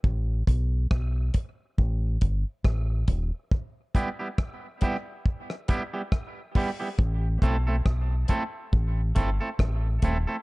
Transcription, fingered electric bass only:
X:1
M:4/4
L:1/16
Q:"Swing 16ths" 1/4=69
K:Am
V:1 name="Fingered electric bass" clef=bass
A,,,2 B,,,2 B,,,2 z2 A,,,2 G,,, z A,,,2 ^D,,, z | z16 | A,,,2 B,,,2 B,,,2 z2 A,,,2 G,,, z A,,,2 ^D,,, z |]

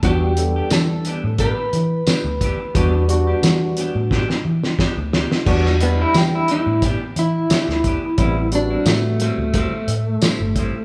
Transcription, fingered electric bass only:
X:1
M:4/4
L:1/16
Q:"Swing 16ths" 1/4=88
K:Em
V:1 name="Fingered electric bass" clef=bass
E,,4 E,3 A,,2 z E,2 z D,,2 z | E,,4 E,3 A,,2 z E,2 z D,,2 z | E,,4 E,3 A,,2 z E,2 z D,,2 z | A,,,4 A,,3 D,,2 z A,,2 z G,,,2 z |]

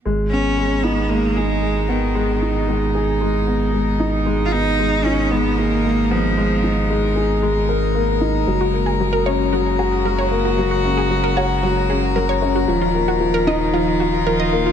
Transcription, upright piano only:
X:1
M:4/4
L:1/8
Q:1/4=114
K:G#dor
V:1 name="Upright piano"
G, B, G, D G, G G, B, | G, D G, G G, B, G, D | G, B, G, D G, G G, B, | G, D G, G G, A A, D |
F, A, F, C F, F F, A, | F, C F, F F, C F, C | E, A, E, D E, E E, A, |]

